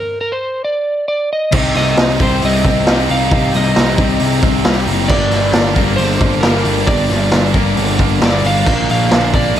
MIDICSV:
0, 0, Header, 1, 7, 480
1, 0, Start_track
1, 0, Key_signature, -3, "minor"
1, 0, Tempo, 446429
1, 1643, Time_signature, 4, 2, 24, 8
1, 10321, End_track
2, 0, Start_track
2, 0, Title_t, "Electric slide guitar"
2, 0, Program_c, 0, 29
2, 0, Note_on_c, 0, 70, 80
2, 213, Note_off_c, 0, 70, 0
2, 226, Note_on_c, 0, 70, 83
2, 337, Note_off_c, 0, 70, 0
2, 344, Note_on_c, 0, 72, 83
2, 689, Note_off_c, 0, 72, 0
2, 694, Note_on_c, 0, 74, 82
2, 1150, Note_off_c, 0, 74, 0
2, 1163, Note_on_c, 0, 74, 75
2, 1386, Note_off_c, 0, 74, 0
2, 1426, Note_on_c, 0, 75, 81
2, 1887, Note_off_c, 0, 75, 0
2, 1900, Note_on_c, 0, 75, 99
2, 2338, Note_off_c, 0, 75, 0
2, 2392, Note_on_c, 0, 72, 88
2, 2601, Note_off_c, 0, 72, 0
2, 2634, Note_on_c, 0, 75, 102
2, 3294, Note_off_c, 0, 75, 0
2, 3346, Note_on_c, 0, 77, 101
2, 3825, Note_on_c, 0, 75, 99
2, 3827, Note_off_c, 0, 77, 0
2, 5207, Note_off_c, 0, 75, 0
2, 5465, Note_on_c, 0, 74, 110
2, 6388, Note_off_c, 0, 74, 0
2, 6413, Note_on_c, 0, 72, 97
2, 6891, Note_on_c, 0, 70, 78
2, 6919, Note_off_c, 0, 72, 0
2, 7384, Note_on_c, 0, 74, 98
2, 7399, Note_off_c, 0, 70, 0
2, 8068, Note_off_c, 0, 74, 0
2, 8875, Note_on_c, 0, 74, 85
2, 9098, Note_on_c, 0, 77, 95
2, 9103, Note_off_c, 0, 74, 0
2, 9568, Note_off_c, 0, 77, 0
2, 9580, Note_on_c, 0, 77, 99
2, 10017, Note_off_c, 0, 77, 0
2, 10053, Note_on_c, 0, 74, 95
2, 10270, Note_off_c, 0, 74, 0
2, 10321, End_track
3, 0, Start_track
3, 0, Title_t, "Grand piano"
3, 0, Program_c, 1, 0
3, 1643, Note_on_c, 1, 67, 65
3, 1646, Note_on_c, 1, 63, 73
3, 1652, Note_on_c, 1, 72, 68
3, 1652, Note_on_c, 1, 75, 83
3, 2027, Note_off_c, 1, 67, 0
3, 2028, Note_off_c, 1, 63, 0
3, 2031, Note_off_c, 1, 72, 0
3, 2031, Note_off_c, 1, 75, 0
3, 2117, Note_on_c, 1, 63, 77
3, 2122, Note_on_c, 1, 67, 70
3, 2130, Note_on_c, 1, 72, 71
3, 2132, Note_on_c, 1, 75, 83
3, 2887, Note_off_c, 1, 63, 0
3, 2889, Note_off_c, 1, 67, 0
3, 2893, Note_off_c, 1, 72, 0
3, 2894, Note_off_c, 1, 75, 0
3, 3559, Note_on_c, 1, 63, 74
3, 3562, Note_on_c, 1, 67, 67
3, 3565, Note_on_c, 1, 72, 64
3, 3572, Note_on_c, 1, 75, 82
3, 3943, Note_off_c, 1, 63, 0
3, 3945, Note_off_c, 1, 67, 0
3, 3946, Note_off_c, 1, 72, 0
3, 3950, Note_off_c, 1, 75, 0
3, 4033, Note_on_c, 1, 63, 75
3, 4035, Note_on_c, 1, 67, 72
3, 4042, Note_on_c, 1, 75, 87
3, 4043, Note_on_c, 1, 72, 71
3, 4803, Note_off_c, 1, 63, 0
3, 4804, Note_off_c, 1, 67, 0
3, 4808, Note_off_c, 1, 72, 0
3, 4808, Note_off_c, 1, 75, 0
3, 5482, Note_on_c, 1, 62, 74
3, 5483, Note_on_c, 1, 67, 70
3, 5490, Note_on_c, 1, 70, 71
3, 5491, Note_on_c, 1, 74, 83
3, 5863, Note_off_c, 1, 62, 0
3, 5864, Note_off_c, 1, 67, 0
3, 5867, Note_off_c, 1, 70, 0
3, 5868, Note_off_c, 1, 74, 0
3, 5950, Note_on_c, 1, 62, 75
3, 5955, Note_on_c, 1, 67, 72
3, 5955, Note_on_c, 1, 70, 72
3, 5960, Note_on_c, 1, 74, 86
3, 6721, Note_off_c, 1, 62, 0
3, 6724, Note_off_c, 1, 67, 0
3, 6724, Note_off_c, 1, 70, 0
3, 6726, Note_off_c, 1, 74, 0
3, 7381, Note_on_c, 1, 62, 75
3, 7383, Note_on_c, 1, 67, 68
3, 7391, Note_on_c, 1, 70, 69
3, 7397, Note_on_c, 1, 74, 83
3, 7773, Note_off_c, 1, 62, 0
3, 7774, Note_off_c, 1, 67, 0
3, 7778, Note_off_c, 1, 70, 0
3, 7781, Note_off_c, 1, 74, 0
3, 7855, Note_on_c, 1, 62, 82
3, 7861, Note_on_c, 1, 67, 72
3, 7865, Note_on_c, 1, 70, 66
3, 7865, Note_on_c, 1, 74, 84
3, 8634, Note_off_c, 1, 62, 0
3, 8637, Note_off_c, 1, 67, 0
3, 8639, Note_off_c, 1, 70, 0
3, 8639, Note_off_c, 1, 74, 0
3, 9315, Note_on_c, 1, 62, 70
3, 9320, Note_on_c, 1, 65, 67
3, 9321, Note_on_c, 1, 70, 69
3, 9329, Note_on_c, 1, 74, 83
3, 9701, Note_off_c, 1, 62, 0
3, 9703, Note_off_c, 1, 65, 0
3, 9704, Note_off_c, 1, 70, 0
3, 9708, Note_off_c, 1, 74, 0
3, 9795, Note_on_c, 1, 62, 78
3, 9803, Note_on_c, 1, 65, 69
3, 9803, Note_on_c, 1, 70, 73
3, 9806, Note_on_c, 1, 74, 84
3, 10321, Note_off_c, 1, 62, 0
3, 10321, Note_off_c, 1, 65, 0
3, 10321, Note_off_c, 1, 70, 0
3, 10321, Note_off_c, 1, 74, 0
3, 10321, End_track
4, 0, Start_track
4, 0, Title_t, "Distorted electric guitar"
4, 0, Program_c, 2, 30
4, 1628, Note_on_c, 2, 48, 90
4, 1637, Note_on_c, 2, 55, 94
4, 1647, Note_on_c, 2, 60, 101
4, 1657, Note_on_c, 2, 63, 104
4, 1660, Note_on_c, 2, 67, 99
4, 2355, Note_off_c, 2, 67, 0
4, 2359, Note_on_c, 2, 67, 80
4, 2365, Note_off_c, 2, 63, 0
4, 2369, Note_on_c, 2, 63, 66
4, 2373, Note_off_c, 2, 60, 0
4, 2377, Note_on_c, 2, 60, 69
4, 2381, Note_off_c, 2, 55, 0
4, 2384, Note_off_c, 2, 48, 0
4, 2386, Note_on_c, 2, 55, 68
4, 2388, Note_on_c, 2, 48, 70
4, 3062, Note_off_c, 2, 48, 0
4, 3071, Note_off_c, 2, 63, 0
4, 3075, Note_off_c, 2, 60, 0
4, 3075, Note_on_c, 2, 48, 75
4, 3082, Note_off_c, 2, 55, 0
4, 3086, Note_on_c, 2, 55, 83
4, 3092, Note_on_c, 2, 60, 80
4, 3098, Note_on_c, 2, 63, 90
4, 3105, Note_off_c, 2, 67, 0
4, 3109, Note_on_c, 2, 67, 95
4, 3543, Note_off_c, 2, 48, 0
4, 3552, Note_off_c, 2, 60, 0
4, 3555, Note_off_c, 2, 63, 0
4, 3556, Note_on_c, 2, 48, 98
4, 3560, Note_off_c, 2, 55, 0
4, 3564, Note_on_c, 2, 55, 93
4, 3568, Note_on_c, 2, 60, 100
4, 3575, Note_on_c, 2, 63, 101
4, 3582, Note_off_c, 2, 67, 0
4, 3586, Note_on_c, 2, 67, 100
4, 4263, Note_off_c, 2, 48, 0
4, 4269, Note_off_c, 2, 60, 0
4, 4272, Note_off_c, 2, 63, 0
4, 4275, Note_off_c, 2, 67, 0
4, 4279, Note_on_c, 2, 67, 80
4, 4290, Note_on_c, 2, 63, 70
4, 4300, Note_on_c, 2, 60, 71
4, 4304, Note_off_c, 2, 55, 0
4, 4308, Note_on_c, 2, 55, 71
4, 4313, Note_on_c, 2, 48, 63
4, 4983, Note_off_c, 2, 48, 0
4, 4989, Note_off_c, 2, 63, 0
4, 4994, Note_off_c, 2, 60, 0
4, 4995, Note_on_c, 2, 48, 82
4, 5002, Note_off_c, 2, 55, 0
4, 5007, Note_on_c, 2, 55, 78
4, 5014, Note_on_c, 2, 60, 89
4, 5020, Note_off_c, 2, 67, 0
4, 5020, Note_on_c, 2, 63, 90
4, 5025, Note_on_c, 2, 67, 85
4, 5462, Note_off_c, 2, 48, 0
4, 5471, Note_off_c, 2, 60, 0
4, 5474, Note_off_c, 2, 63, 0
4, 5475, Note_on_c, 2, 43, 94
4, 5481, Note_on_c, 2, 50, 92
4, 5484, Note_off_c, 2, 55, 0
4, 5489, Note_on_c, 2, 55, 96
4, 5497, Note_on_c, 2, 58, 103
4, 5499, Note_off_c, 2, 67, 0
4, 5503, Note_on_c, 2, 70, 107
4, 5505, Note_on_c, 2, 62, 94
4, 6185, Note_off_c, 2, 50, 0
4, 6194, Note_off_c, 2, 70, 0
4, 6199, Note_on_c, 2, 70, 86
4, 6204, Note_off_c, 2, 62, 0
4, 6208, Note_on_c, 2, 62, 78
4, 6209, Note_off_c, 2, 58, 0
4, 6213, Note_on_c, 2, 58, 73
4, 6222, Note_off_c, 2, 55, 0
4, 6226, Note_off_c, 2, 43, 0
4, 6226, Note_on_c, 2, 55, 74
4, 6227, Note_on_c, 2, 50, 65
4, 6230, Note_on_c, 2, 43, 65
4, 6888, Note_off_c, 2, 43, 0
4, 6897, Note_off_c, 2, 50, 0
4, 6901, Note_off_c, 2, 55, 0
4, 6901, Note_on_c, 2, 43, 84
4, 6910, Note_on_c, 2, 50, 85
4, 6914, Note_on_c, 2, 55, 84
4, 6916, Note_off_c, 2, 58, 0
4, 6919, Note_off_c, 2, 62, 0
4, 6920, Note_on_c, 2, 58, 84
4, 6923, Note_on_c, 2, 62, 83
4, 6927, Note_off_c, 2, 70, 0
4, 6931, Note_on_c, 2, 70, 96
4, 7367, Note_off_c, 2, 43, 0
4, 7379, Note_off_c, 2, 50, 0
4, 7380, Note_on_c, 2, 43, 90
4, 7381, Note_off_c, 2, 55, 0
4, 7392, Note_on_c, 2, 50, 99
4, 7395, Note_off_c, 2, 58, 0
4, 7396, Note_on_c, 2, 55, 95
4, 7399, Note_on_c, 2, 58, 106
4, 7405, Note_off_c, 2, 62, 0
4, 7410, Note_off_c, 2, 70, 0
4, 7410, Note_on_c, 2, 62, 100
4, 7414, Note_on_c, 2, 70, 110
4, 8094, Note_off_c, 2, 43, 0
4, 8095, Note_off_c, 2, 70, 0
4, 8099, Note_on_c, 2, 70, 77
4, 8100, Note_off_c, 2, 50, 0
4, 8102, Note_off_c, 2, 55, 0
4, 8104, Note_off_c, 2, 62, 0
4, 8108, Note_on_c, 2, 62, 71
4, 8112, Note_off_c, 2, 58, 0
4, 8116, Note_on_c, 2, 58, 80
4, 8117, Note_on_c, 2, 55, 73
4, 8130, Note_on_c, 2, 50, 70
4, 8133, Note_on_c, 2, 43, 68
4, 8804, Note_off_c, 2, 43, 0
4, 8813, Note_off_c, 2, 50, 0
4, 8817, Note_on_c, 2, 43, 72
4, 8823, Note_off_c, 2, 55, 0
4, 8826, Note_on_c, 2, 50, 82
4, 8834, Note_on_c, 2, 55, 89
4, 8837, Note_off_c, 2, 58, 0
4, 8841, Note_on_c, 2, 58, 80
4, 8842, Note_off_c, 2, 62, 0
4, 8845, Note_off_c, 2, 70, 0
4, 8847, Note_on_c, 2, 62, 96
4, 8849, Note_on_c, 2, 70, 88
4, 9293, Note_off_c, 2, 43, 0
4, 9298, Note_off_c, 2, 50, 0
4, 9302, Note_off_c, 2, 55, 0
4, 9302, Note_on_c, 2, 46, 94
4, 9310, Note_on_c, 2, 50, 93
4, 9314, Note_on_c, 2, 53, 91
4, 9319, Note_off_c, 2, 58, 0
4, 9323, Note_on_c, 2, 58, 96
4, 9325, Note_off_c, 2, 62, 0
4, 9330, Note_on_c, 2, 62, 96
4, 9332, Note_off_c, 2, 70, 0
4, 9336, Note_on_c, 2, 70, 102
4, 10020, Note_off_c, 2, 50, 0
4, 10032, Note_off_c, 2, 70, 0
4, 10036, Note_on_c, 2, 70, 74
4, 10037, Note_off_c, 2, 62, 0
4, 10039, Note_off_c, 2, 58, 0
4, 10041, Note_on_c, 2, 62, 79
4, 10043, Note_on_c, 2, 58, 66
4, 10050, Note_off_c, 2, 53, 0
4, 10055, Note_on_c, 2, 53, 71
4, 10058, Note_on_c, 2, 50, 62
4, 10061, Note_off_c, 2, 46, 0
4, 10065, Note_on_c, 2, 46, 74
4, 10321, Note_off_c, 2, 46, 0
4, 10321, Note_off_c, 2, 50, 0
4, 10321, Note_off_c, 2, 53, 0
4, 10321, Note_off_c, 2, 58, 0
4, 10321, Note_off_c, 2, 62, 0
4, 10321, Note_off_c, 2, 70, 0
4, 10321, End_track
5, 0, Start_track
5, 0, Title_t, "Distorted electric guitar"
5, 0, Program_c, 3, 30
5, 1644, Note_on_c, 3, 48, 78
5, 2121, Note_on_c, 3, 63, 82
5, 2352, Note_on_c, 3, 60, 68
5, 2594, Note_off_c, 3, 48, 0
5, 2607, Note_on_c, 3, 48, 81
5, 2821, Note_off_c, 3, 60, 0
5, 2833, Note_on_c, 3, 60, 66
5, 3073, Note_on_c, 3, 55, 70
5, 3294, Note_off_c, 3, 63, 0
5, 3307, Note_on_c, 3, 63, 73
5, 3544, Note_off_c, 3, 48, 0
5, 3557, Note_on_c, 3, 48, 81
5, 4017, Note_off_c, 3, 63, 0
5, 4030, Note_on_c, 3, 63, 77
5, 4036, Note_off_c, 3, 60, 0
5, 4273, Note_on_c, 3, 60, 70
5, 4497, Note_off_c, 3, 48, 0
5, 4510, Note_on_c, 3, 48, 79
5, 4744, Note_off_c, 3, 60, 0
5, 4757, Note_on_c, 3, 60, 72
5, 4986, Note_off_c, 3, 55, 0
5, 4990, Note_on_c, 3, 55, 70
5, 5218, Note_off_c, 3, 63, 0
5, 5231, Note_on_c, 3, 63, 69
5, 5473, Note_off_c, 3, 48, 0
5, 5474, Note_off_c, 3, 63, 0
5, 5477, Note_off_c, 3, 60, 0
5, 5478, Note_on_c, 3, 43, 85
5, 5944, Note_on_c, 3, 62, 77
5, 6177, Note_on_c, 3, 58, 69
5, 6426, Note_on_c, 3, 50, 82
5, 6663, Note_off_c, 3, 58, 0
5, 6668, Note_on_c, 3, 58, 69
5, 6677, Note_off_c, 3, 43, 0
5, 6905, Note_off_c, 3, 55, 0
5, 6910, Note_on_c, 3, 55, 78
5, 7146, Note_off_c, 3, 62, 0
5, 7151, Note_on_c, 3, 62, 69
5, 7376, Note_on_c, 3, 43, 81
5, 7631, Note_off_c, 3, 50, 0
5, 7850, Note_off_c, 3, 62, 0
5, 7855, Note_on_c, 3, 62, 77
5, 8093, Note_off_c, 3, 58, 0
5, 8097, Note_on_c, 3, 58, 73
5, 8113, Note_off_c, 3, 55, 0
5, 8348, Note_on_c, 3, 50, 80
5, 8580, Note_off_c, 3, 58, 0
5, 8584, Note_on_c, 3, 58, 64
5, 8587, Note_off_c, 3, 43, 0
5, 8821, Note_on_c, 3, 55, 76
5, 9070, Note_off_c, 3, 62, 0
5, 9075, Note_on_c, 3, 62, 70
5, 9309, Note_off_c, 3, 55, 0
5, 9309, Note_on_c, 3, 46, 81
5, 9313, Note_off_c, 3, 50, 0
5, 9778, Note_off_c, 3, 62, 0
5, 9782, Note_on_c, 3, 62, 77
5, 10024, Note_off_c, 3, 58, 0
5, 10029, Note_on_c, 3, 58, 72
5, 10264, Note_on_c, 3, 50, 80
5, 10321, Note_off_c, 3, 46, 0
5, 10321, Note_off_c, 3, 50, 0
5, 10321, Note_off_c, 3, 58, 0
5, 10321, Note_off_c, 3, 62, 0
5, 10321, End_track
6, 0, Start_track
6, 0, Title_t, "Picked electric bass"
6, 0, Program_c, 4, 34
6, 1649, Note_on_c, 4, 36, 96
6, 1874, Note_off_c, 4, 36, 0
6, 1887, Note_on_c, 4, 36, 93
6, 2113, Note_off_c, 4, 36, 0
6, 2122, Note_on_c, 4, 36, 82
6, 2351, Note_off_c, 4, 36, 0
6, 2372, Note_on_c, 4, 36, 97
6, 2596, Note_off_c, 4, 36, 0
6, 2616, Note_on_c, 4, 36, 92
6, 2837, Note_off_c, 4, 36, 0
6, 2851, Note_on_c, 4, 36, 97
6, 3075, Note_off_c, 4, 36, 0
6, 3094, Note_on_c, 4, 36, 84
6, 3316, Note_off_c, 4, 36, 0
6, 3332, Note_on_c, 4, 36, 89
6, 3555, Note_off_c, 4, 36, 0
6, 3569, Note_on_c, 4, 36, 96
6, 3793, Note_off_c, 4, 36, 0
6, 3807, Note_on_c, 4, 36, 93
6, 4032, Note_off_c, 4, 36, 0
6, 4045, Note_on_c, 4, 36, 88
6, 4270, Note_off_c, 4, 36, 0
6, 4286, Note_on_c, 4, 36, 88
6, 4511, Note_off_c, 4, 36, 0
6, 4525, Note_on_c, 4, 36, 95
6, 4750, Note_off_c, 4, 36, 0
6, 4767, Note_on_c, 4, 36, 101
6, 4991, Note_off_c, 4, 36, 0
6, 5005, Note_on_c, 4, 36, 92
6, 5230, Note_off_c, 4, 36, 0
6, 5236, Note_on_c, 4, 30, 87
6, 5485, Note_off_c, 4, 30, 0
6, 5485, Note_on_c, 4, 31, 89
6, 5710, Note_off_c, 4, 31, 0
6, 5720, Note_on_c, 4, 31, 95
6, 5947, Note_off_c, 4, 31, 0
6, 5960, Note_on_c, 4, 31, 86
6, 6187, Note_off_c, 4, 31, 0
6, 6197, Note_on_c, 4, 31, 88
6, 6425, Note_off_c, 4, 31, 0
6, 6444, Note_on_c, 4, 31, 98
6, 6669, Note_off_c, 4, 31, 0
6, 6673, Note_on_c, 4, 31, 95
6, 6903, Note_off_c, 4, 31, 0
6, 6921, Note_on_c, 4, 31, 91
6, 7147, Note_off_c, 4, 31, 0
6, 7156, Note_on_c, 4, 31, 87
6, 7385, Note_off_c, 4, 31, 0
6, 7392, Note_on_c, 4, 31, 100
6, 7623, Note_off_c, 4, 31, 0
6, 7645, Note_on_c, 4, 31, 95
6, 7870, Note_off_c, 4, 31, 0
6, 7888, Note_on_c, 4, 31, 85
6, 8108, Note_off_c, 4, 31, 0
6, 8115, Note_on_c, 4, 31, 96
6, 8344, Note_off_c, 4, 31, 0
6, 8360, Note_on_c, 4, 31, 92
6, 8587, Note_off_c, 4, 31, 0
6, 8600, Note_on_c, 4, 31, 96
6, 8827, Note_off_c, 4, 31, 0
6, 8834, Note_on_c, 4, 31, 93
6, 9064, Note_off_c, 4, 31, 0
6, 9076, Note_on_c, 4, 31, 83
6, 9305, Note_off_c, 4, 31, 0
6, 9322, Note_on_c, 4, 34, 89
6, 9549, Note_off_c, 4, 34, 0
6, 9568, Note_on_c, 4, 34, 95
6, 9792, Note_off_c, 4, 34, 0
6, 9803, Note_on_c, 4, 34, 84
6, 10029, Note_off_c, 4, 34, 0
6, 10045, Note_on_c, 4, 34, 98
6, 10271, Note_off_c, 4, 34, 0
6, 10280, Note_on_c, 4, 34, 94
6, 10321, Note_off_c, 4, 34, 0
6, 10321, End_track
7, 0, Start_track
7, 0, Title_t, "Drums"
7, 1635, Note_on_c, 9, 49, 115
7, 1644, Note_on_c, 9, 36, 114
7, 1743, Note_off_c, 9, 49, 0
7, 1751, Note_off_c, 9, 36, 0
7, 1881, Note_on_c, 9, 46, 60
7, 1884, Note_on_c, 9, 38, 35
7, 1989, Note_off_c, 9, 46, 0
7, 1991, Note_off_c, 9, 38, 0
7, 2120, Note_on_c, 9, 46, 79
7, 2122, Note_on_c, 9, 38, 106
7, 2227, Note_off_c, 9, 46, 0
7, 2229, Note_off_c, 9, 38, 0
7, 2362, Note_on_c, 9, 46, 59
7, 2366, Note_on_c, 9, 36, 95
7, 2469, Note_off_c, 9, 46, 0
7, 2473, Note_off_c, 9, 36, 0
7, 2602, Note_on_c, 9, 46, 83
7, 2709, Note_off_c, 9, 46, 0
7, 2845, Note_on_c, 9, 36, 87
7, 2845, Note_on_c, 9, 46, 59
7, 2953, Note_off_c, 9, 36, 0
7, 2953, Note_off_c, 9, 46, 0
7, 3081, Note_on_c, 9, 46, 75
7, 3084, Note_on_c, 9, 38, 104
7, 3189, Note_off_c, 9, 46, 0
7, 3191, Note_off_c, 9, 38, 0
7, 3322, Note_on_c, 9, 46, 60
7, 3430, Note_off_c, 9, 46, 0
7, 3561, Note_on_c, 9, 46, 77
7, 3564, Note_on_c, 9, 36, 107
7, 3668, Note_off_c, 9, 46, 0
7, 3672, Note_off_c, 9, 36, 0
7, 3804, Note_on_c, 9, 46, 57
7, 3806, Note_on_c, 9, 38, 32
7, 3911, Note_off_c, 9, 46, 0
7, 3914, Note_off_c, 9, 38, 0
7, 4042, Note_on_c, 9, 46, 80
7, 4044, Note_on_c, 9, 38, 104
7, 4150, Note_off_c, 9, 46, 0
7, 4152, Note_off_c, 9, 38, 0
7, 4278, Note_on_c, 9, 46, 67
7, 4282, Note_on_c, 9, 36, 99
7, 4385, Note_off_c, 9, 46, 0
7, 4389, Note_off_c, 9, 36, 0
7, 4511, Note_on_c, 9, 46, 90
7, 4619, Note_off_c, 9, 46, 0
7, 4758, Note_on_c, 9, 46, 69
7, 4761, Note_on_c, 9, 36, 96
7, 4866, Note_off_c, 9, 46, 0
7, 4868, Note_off_c, 9, 36, 0
7, 4995, Note_on_c, 9, 46, 87
7, 4997, Note_on_c, 9, 38, 118
7, 5102, Note_off_c, 9, 46, 0
7, 5104, Note_off_c, 9, 38, 0
7, 5238, Note_on_c, 9, 46, 68
7, 5346, Note_off_c, 9, 46, 0
7, 5475, Note_on_c, 9, 57, 99
7, 5479, Note_on_c, 9, 36, 107
7, 5583, Note_off_c, 9, 57, 0
7, 5586, Note_off_c, 9, 36, 0
7, 5711, Note_on_c, 9, 46, 66
7, 5713, Note_on_c, 9, 38, 33
7, 5818, Note_off_c, 9, 46, 0
7, 5821, Note_off_c, 9, 38, 0
7, 5947, Note_on_c, 9, 46, 77
7, 5950, Note_on_c, 9, 38, 108
7, 6055, Note_off_c, 9, 46, 0
7, 6057, Note_off_c, 9, 38, 0
7, 6186, Note_on_c, 9, 46, 67
7, 6195, Note_on_c, 9, 36, 91
7, 6294, Note_off_c, 9, 46, 0
7, 6302, Note_off_c, 9, 36, 0
7, 6429, Note_on_c, 9, 46, 79
7, 6536, Note_off_c, 9, 46, 0
7, 6670, Note_on_c, 9, 46, 62
7, 6674, Note_on_c, 9, 36, 90
7, 6778, Note_off_c, 9, 46, 0
7, 6782, Note_off_c, 9, 36, 0
7, 6910, Note_on_c, 9, 46, 79
7, 6912, Note_on_c, 9, 38, 110
7, 7018, Note_off_c, 9, 46, 0
7, 7020, Note_off_c, 9, 38, 0
7, 7150, Note_on_c, 9, 46, 63
7, 7257, Note_off_c, 9, 46, 0
7, 7388, Note_on_c, 9, 46, 79
7, 7391, Note_on_c, 9, 36, 104
7, 7496, Note_off_c, 9, 46, 0
7, 7498, Note_off_c, 9, 36, 0
7, 7624, Note_on_c, 9, 46, 55
7, 7626, Note_on_c, 9, 38, 32
7, 7731, Note_off_c, 9, 46, 0
7, 7733, Note_off_c, 9, 38, 0
7, 7865, Note_on_c, 9, 46, 76
7, 7867, Note_on_c, 9, 38, 112
7, 7973, Note_off_c, 9, 46, 0
7, 7975, Note_off_c, 9, 38, 0
7, 8103, Note_on_c, 9, 46, 65
7, 8110, Note_on_c, 9, 36, 94
7, 8211, Note_off_c, 9, 46, 0
7, 8218, Note_off_c, 9, 36, 0
7, 8353, Note_on_c, 9, 46, 81
7, 8460, Note_off_c, 9, 46, 0
7, 8594, Note_on_c, 9, 36, 91
7, 8596, Note_on_c, 9, 46, 66
7, 8701, Note_off_c, 9, 36, 0
7, 8703, Note_off_c, 9, 46, 0
7, 8834, Note_on_c, 9, 46, 93
7, 8836, Note_on_c, 9, 38, 116
7, 8941, Note_off_c, 9, 46, 0
7, 8943, Note_off_c, 9, 38, 0
7, 9079, Note_on_c, 9, 46, 66
7, 9187, Note_off_c, 9, 46, 0
7, 9317, Note_on_c, 9, 36, 106
7, 9321, Note_on_c, 9, 57, 106
7, 9424, Note_off_c, 9, 36, 0
7, 9428, Note_off_c, 9, 57, 0
7, 9560, Note_on_c, 9, 46, 62
7, 9667, Note_off_c, 9, 46, 0
7, 9797, Note_on_c, 9, 46, 82
7, 9800, Note_on_c, 9, 38, 108
7, 9905, Note_off_c, 9, 46, 0
7, 9907, Note_off_c, 9, 38, 0
7, 10039, Note_on_c, 9, 36, 90
7, 10039, Note_on_c, 9, 46, 69
7, 10147, Note_off_c, 9, 36, 0
7, 10147, Note_off_c, 9, 46, 0
7, 10278, Note_on_c, 9, 46, 84
7, 10321, Note_off_c, 9, 46, 0
7, 10321, End_track
0, 0, End_of_file